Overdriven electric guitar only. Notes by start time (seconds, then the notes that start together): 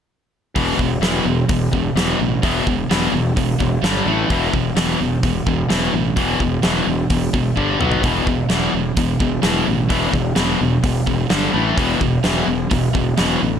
0.56 E2 B2 E3
0.79 E2 B2
1.01 E2 B2 E3
1.26 E2 B2
1.49 E2 B2
1.72 E2 B2
1.96 E2 B2 E3
2.19 E2 B2
2.43 E2 B2 E3
2.67 E2 B2
2.90 E2 B2 E3
3.14 E2 B2
3.38 E2 B2
3.60 E2 B2
3.83 G2 D3 G3
4.07 A2 E3 A3
4.30 E2 B2 E3
4.54 E2 B2
4.76 E2 B2 E3
4.99 E2 B2
5.24 E2 B2
5.47 E2 B2
5.69 E2 B2 E3
5.94 E2 B2
6.16 E2 B2 E3
6.41 E2 B2
6.63 E2 B2 E3
6.88 E2 B2
7.10 E2 B2
7.33 E2 B2
7.56 G2 D3 G3
7.80 B2 F#3 B3
8.04 E2 B2 E3
8.28 E2 B2
8.50 E2 B2 E3
8.74 E2 B2
8.98 E2 B2
9.21 E2 B2
9.42 E2 B2 E3
9.67 E2 B2
9.89 E2 B2 E3
10.13 E2 B2
10.36 E2 B2 E3
10.60 E2 B2
10.83 E2 B2
11.06 E2 B2
11.30 G2 D3 G3
11.53 A2 E3 A3
11.77 E2 B2 E3
12.01 E2 B2
12.24 E2 B2 E3
12.48 E2 B2
12.71 E2 B2
12.94 E2 B2
13.17 E2 B2 E3
13.42 E2 B2